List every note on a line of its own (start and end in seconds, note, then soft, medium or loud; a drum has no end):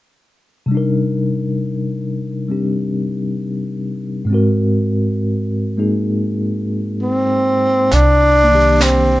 0.66 4.28 C3 soft
0.66 2.47 G3 soft
0.72 2.50 D4 soft
0.72 4.32 D#4 soft
0.77 4.33 A#4 soft
2.48 4.29 G3 soft
2.48 4.29 C4 soft
2.48 4.31 D4 soft
2.48 4.31 G4 soft
4.25 7.87 G#2 soft
4.25 5.76 G#3 soft
4.30 7.89 C4 soft
4.30 7.91 F#4 soft
4.34 7.91 A#4 soft
5.77 7.89 G#3 soft
5.77 7.89 A#3 soft
5.77 7.89 D#4 soft
5.77 7.90 G#4 soft
7.02 7.95 C4 medium
7.91 9.20 C2 medium
7.91 8.84 D4 medium
7.91 brush sweep soft
7.91 snare soft
8.44 9.20 A#3 soft
8.48 9.20 D#3 soft
8.48 9.20 D4 soft
8.55 9.20 G4 soft
8.81 9.20 C4 medium
8.81 snare soft
8.81 hi-hat pedal soft